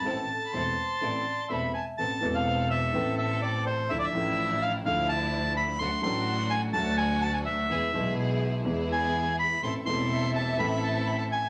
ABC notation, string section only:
X:1
M:4/4
L:1/8
Q:1/4=126
K:Am
V:1 name="String section"
[CEA] z [CEA] z [CEA] z [CEA] z | [B,CA] [CA]3 [CA]4 | [F,DE] [F,DE]3 [F,DE]4 | [A,D^F] [A,DF]3 [A,DF]4 |
[B,E^G] [B,EG]3 [B,EG]4 | [CEA] [CEA]3 [CEA]4 |]